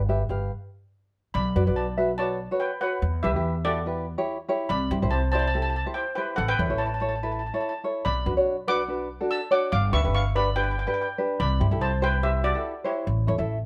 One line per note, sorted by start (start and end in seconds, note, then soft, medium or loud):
0.00 0.26 G1 loud
0.00 1.10 D5 medium
0.09 0.22 G4 medium
0.09 0.22 B4 medium
0.09 0.22 E5 medium
0.29 0.49 G1 medium
0.29 0.51 G4 medium
0.29 0.51 B4 medium
0.29 0.51 F5 medium
1.34 1.54 B1 loud
1.34 1.74 D5 medium
1.34 1.73 B5 medium
1.56 1.68 F#2 medium
1.56 1.62 F#4 medium
1.56 1.62 B4 medium
1.56 1.62 D5 medium
1.67 2.47 B1 medium
1.67 1.85 F#4 medium
1.67 1.86 B4 medium
1.67 1.86 D5 medium
1.76 2.16 D5 medium
1.76 2.17 A5 medium
1.97 2.11 F#4 medium
1.97 2.11 B4 medium
1.97 2.11 E5 medium
2.18 2.38 F#4 medium
2.18 2.38 B4 medium
2.18 2.38 C#5 medium
2.18 2.58 D5 medium
2.18 2.61 A5 medium
2.51 2.70 F#4 medium
2.51 2.70 B4 medium
2.51 2.70 C#5 medium
2.60 2.80 B4 medium
2.60 2.82 G5 medium
2.81 3.02 F#4 medium
2.81 3.20 B4 medium
2.81 3.03 B4 medium
2.81 3.03 C#5 medium
2.81 3.20 F#5 medium
3.02 3.22 E2 medium
3.23 3.35 B1 medium
3.23 3.30 E4 medium
3.23 3.30 G4 medium
3.23 3.62 G4 medium
3.23 3.30 B4 medium
3.23 3.66 E5 medium
3.35 4.14 E2 medium
3.35 3.54 E4 medium
3.35 3.54 G4 medium
3.35 3.54 B4 medium
3.65 3.78 E4 medium
3.65 4.45 F#4 medium
3.65 3.79 G4 medium
3.65 3.79 A4 medium
3.65 4.45 D5 loud
3.86 4.05 E4 medium
3.86 4.05 G4 medium
3.86 4.05 B4 medium
4.18 4.37 E4 medium
4.18 4.37 G4 medium
4.18 4.37 C#5 loud
4.49 4.70 E4 medium
4.49 4.70 G4 medium
4.49 4.70 C#5 medium
4.69 4.89 C2 medium
4.69 5.09 D5 medium
4.69 5.09 B5 loud
4.91 5.04 G2 loud
4.91 4.98 E4 medium
4.91 4.98 G4 medium
4.91 4.98 C5 medium
5.02 5.82 C2 medium
5.02 5.21 E4 medium
5.02 5.21 G4 medium
5.02 5.21 C5 medium
5.11 5.31 C5 medium
5.11 5.30 A5 medium
5.32 5.46 E4 medium
5.32 5.46 G4 medium
5.32 5.40 C5 medium
5.32 5.47 D5 medium
5.32 5.38 A5 loud
5.39 5.46 A5 medium
5.48 5.53 A5 medium
5.54 5.73 E4 medium
5.54 5.73 G4 medium
5.54 5.73 A4 medium
5.54 5.61 A5 medium
5.62 5.69 A5 medium
5.70 5.75 A5 medium
5.76 5.84 A5 medium
5.86 6.05 E4 medium
5.86 6.05 G4 medium
5.86 6.05 C5 medium
5.94 6.15 C5 medium
5.94 6.14 G5 medium
6.15 6.38 E4 medium
6.15 6.38 G4 medium
6.15 6.36 B4 medium
6.15 6.38 C5 medium
6.15 6.35 G5 medium
6.36 6.57 A1 medium
6.36 6.48 A4 medium
6.36 6.47 F#5 medium
6.48 6.77 B4 medium
6.48 6.80 G5 loud
6.59 6.70 E2 medium
6.59 6.65 E4 medium
6.59 6.65 A4 medium
6.59 6.66 C#5 medium
6.70 7.50 A1 medium
6.70 6.88 E4 medium
6.70 6.89 A4 medium
6.70 6.89 C#5 medium
6.78 6.87 C#5 medium
6.78 6.85 A5 medium
6.86 6.93 A5 medium
6.94 6.99 A5 medium
7.00 7.14 E4 medium
7.00 7.14 A4 medium
7.00 7.14 C#5 medium
7.00 7.08 A5 medium
7.09 7.15 A5 medium
7.16 7.22 A5 medium
7.23 7.41 E4 medium
7.23 7.41 A4 medium
7.23 7.41 B4 medium
7.23 7.31 A5 medium
7.32 7.38 A5 medium
7.39 7.45 A5 medium
7.46 7.53 A5 medium
7.54 7.72 E4 medium
7.54 7.72 A4 medium
7.54 7.72 C#5 medium
7.54 7.59 A5 medium
7.61 7.68 A5 medium
7.69 7.76 A5 medium
7.84 8.05 E4 medium
7.84 8.05 A4 soft
7.84 8.05 C#5 medium
8.05 8.25 B1 medium
8.05 8.64 D5 medium
8.05 8.70 B5 loud
8.25 8.37 F#2 medium
8.25 8.32 D4 medium
8.25 8.33 F#4 medium
8.25 8.33 B4 medium
8.37 9.17 B1 medium
8.37 8.56 D4 medium
8.37 8.56 F#4 medium
8.37 8.56 C#5 medium
8.68 8.81 D4 medium
8.68 8.81 F#4 medium
8.68 8.81 B4 medium
8.68 9.27 F#5 medium
8.68 9.33 D6 loud
8.88 9.07 D4 medium
8.88 9.08 F#4 medium
8.88 9.08 B4 medium
9.21 9.39 D4 medium
9.21 9.39 F#4 medium
9.21 9.39 A4 medium
9.31 9.50 A5 medium
9.31 9.52 E6 medium
9.51 9.72 D4 medium
9.51 9.72 F#4 medium
9.51 9.72 C#5 medium
9.51 9.71 F#5 medium
9.51 9.71 D6 loud
9.72 9.92 G1 loud
9.72 9.92 F5 medium
9.72 9.94 D6 loud
9.92 10.06 D2 loud
9.92 9.99 D4 medium
9.92 10.00 G4 medium
9.92 10.00 B4 medium
9.92 10.13 E5 medium
9.92 10.13 C#6 loud
10.04 10.84 G1 medium
10.04 10.23 D4 medium
10.04 10.23 G4 medium
10.04 10.23 B4 medium
10.15 10.34 F5 medium
10.15 10.36 C#6 loud
10.35 10.48 D4 medium
10.35 10.48 G4 medium
10.35 10.48 B4 medium
10.35 10.55 D5 medium
10.35 10.57 B5 loud
10.56 10.75 D4 medium
10.56 10.75 G4 medium
10.56 10.75 B4 medium
10.56 10.64 B4 medium
10.56 10.62 G5 loud
10.64 10.70 G5 medium
10.71 10.78 G5 medium
10.79 10.86 G5 medium
10.87 11.06 D4 medium
10.87 11.06 G4 medium
10.87 11.07 B4 medium
10.87 10.93 G5 medium
10.94 11.00 G5 medium
11.01 11.09 G5 medium
11.18 11.39 D4 medium
11.18 11.39 G4 medium
11.18 11.39 B4 medium
11.40 11.59 C2 loud
11.40 11.79 D5 medium
11.40 11.83 B5 loud
11.60 11.73 G2 medium
11.60 11.67 E4 medium
11.60 11.67 G4 medium
11.60 11.67 C5 medium
11.71 12.51 C2 medium
11.71 11.90 E4 medium
11.71 11.90 G4 medium
11.71 11.90 A4 medium
11.81 12.01 C5 medium
11.81 12.03 A5 loud
12.02 12.15 E4 medium
12.02 12.15 G4 medium
12.02 12.23 B4 medium
12.02 12.15 C5 loud
12.02 12.24 G5 loud
12.22 12.42 E4 medium
12.22 12.42 G4 medium
12.22 12.43 G4 medium
12.22 12.42 C5 medium
12.22 12.45 E5 loud
12.44 12.83 F#4 medium
12.44 12.83 D5 loud
12.54 12.74 E4 medium
12.54 12.74 G4 medium
12.54 12.74 A4 medium
12.84 13.06 E4 medium
12.84 13.66 E4 medium
12.84 13.06 G4 medium
12.84 13.06 C5 medium
12.84 13.66 C#5 medium
13.07 13.26 A1 medium
13.27 13.40 E2 loud
13.27 13.34 E4 medium
13.27 13.34 A4 medium
13.27 13.35 C#5 medium
13.38 13.66 A1 medium
13.38 13.57 E4 medium
13.38 13.57 A4 medium
13.38 13.57 E5 medium